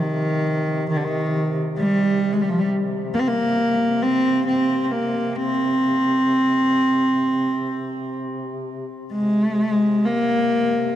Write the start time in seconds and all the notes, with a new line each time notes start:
Already playing: C3 D#3
0.89 D#3
0.97 D3
1.04 D#3
1.78 G3
2.32 G#3
2.42 G3
2.49 F3
2.59 G3
3.14 A#3
3.19 C4
3.27 A#3
4.02 C4
4.47 C4
4.84 C4
4.91 A#3
5.36 C4
9.10 C3 G#3
10.05 A#3